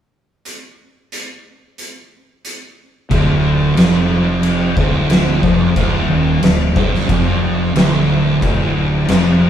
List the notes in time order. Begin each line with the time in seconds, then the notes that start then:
0.45 closed hi-hat
1.12 closed hi-hat
1.78 closed hi-hat
2.45 closed hi-hat
3.10 D1 D2, kick, crash
3.77 F1 F2, snare, crash
4.43 crash
4.77 D1 D2, kick
5.10 snare, crash
5.43 F1 F2, kick
5.76 D1 D2, kick, crash
6.09 D#1 D#2
6.42 D1 D2, snare, crash
6.76 G1 G2, kick
6.94 snare
7.09 F1 F2, kick, crash
7.75 D1 D2, snare, crash
8.42 D1 D2, kick, crash
9.08 F1 F2, snare, crash